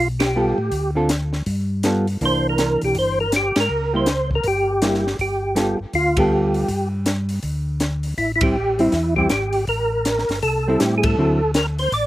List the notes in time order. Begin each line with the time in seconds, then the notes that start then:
Already playing: B1
0.19 G4, snare, ride
0.36 G3 B3 F4 A4
0.58 A2
0.72 D2, kick, open hi-hat
0.95 D3 C4 F4 A4
1.09 snare, closed hi-hat
1.33 snare
1.46 G2, kick, open hi-hat
1.83 G3 B3 F4 A4, snare, closed hi-hat
2.07 open hi-hat
2.21 C2 E3 A#3 D4, kick, open hi-hat
2.25 C5
2.49 A#4
2.58 snare, closed hi-hat
2.81 B1 G4, open hi-hat
2.95 G1 C5, kick, open hi-hat
3.20 A#4
3.32 snare, closed hi-hat
3.36 G4
3.56 G#2, snare, ride
3.60 A#4
3.69 C#2
3.94 G3 A#3 E4 C5
4.06 snare, closed hi-hat
4.31 kick
4.35 A#4
4.44 G1, kick, open hi-hat
4.48 G4
4.82 G3 A#3 E4, snare, closed hi-hat
4.94 snare
5.07 snare
5.19 G1 G4, kick, open hi-hat
5.55 G3 B3 F4 A4, snare, closed hi-hat
5.79 G1
5.93 D2 F4, kick, open hi-hat
6.17 G3 B3 F4 G4 A4, kick, ride
6.54 open hi-hat
6.68 G2, kick, open hi-hat
7.06 snare, closed hi-hat
7.29 open hi-hat
7.43 D2, kick, open hi-hat
7.80 snare, closed hi-hat
8.03 open hi-hat
8.18 A1 E4, kick, open hi-hat
8.36 E4
8.41 G3 C4 E4 G4, kick, ride
8.79 G3 C4 E4, open hi-hat
8.92 E2, kick, snare, open hi-hat
9.16 G3 C4 E4 G4, kick
9.30 G#1 G4, snare, closed hi-hat
9.53 open hi-hat
9.67 A1 A#4, kick, open hi-hat
10.05 snare, closed hi-hat
10.19 snare
10.29 G1, snare, open hi-hat
10.43 C2 A4, kick, open hi-hat
10.68 G3 C4 E4
10.80 A2 G4, snare, closed hi-hat
10.98 G#4
11.03 A4, kick, ride
11.18 D2 D3 F#3 C4 E4
11.54 A#4, snare, closed hi-hat
11.79 C5, open hi-hat
11.92 A1 D5, kick, open hi-hat